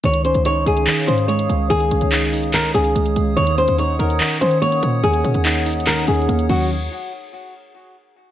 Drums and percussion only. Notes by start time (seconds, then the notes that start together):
0.04 closed hi-hat
0.14 closed hi-hat
0.25 closed hi-hat
0.34 closed hi-hat
0.45 closed hi-hat
0.66 closed hi-hat
0.77 closed hi-hat
0.87 clap, closed hi-hat
0.97 closed hi-hat
1.08 closed hi-hat
1.18 closed hi-hat
1.29 closed hi-hat
1.39 closed hi-hat
1.50 closed hi-hat
1.70 closed hi-hat
1.80 closed hi-hat
1.91 closed hi-hat
2.01 closed hi-hat
2.12 clap, closed hi-hat
2.33 open hi-hat
2.43 closed hi-hat
2.54 clap, closed hi-hat
2.64 closed hi-hat
2.75 closed hi-hat
2.84 closed hi-hat
2.96 closed hi-hat
3.06 closed hi-hat
3.16 closed hi-hat
3.37 closed hi-hat
3.47 closed hi-hat
3.58 closed hi-hat
3.68 closed hi-hat
3.78 closed hi-hat
4.00 closed hi-hat
4.10 closed hi-hat
4.20 clap, closed hi-hat
4.30 closed hi-hat
4.42 closed hi-hat
4.51 closed hi-hat
4.62 closed hi-hat
4.72 closed hi-hat
4.83 closed hi-hat
5.04 closed hi-hat
5.13 closed hi-hat
5.25 closed hi-hat
5.34 closed hi-hat
5.45 clap, closed hi-hat
5.66 closed hi-hat, open hi-hat
5.73 closed hi-hat
5.80 closed hi-hat
5.87 clap, closed hi-hat
5.97 closed hi-hat
6.08 closed hi-hat
6.15 closed hi-hat
6.22 closed hi-hat
6.29 closed hi-hat
6.39 closed hi-hat
6.49 crash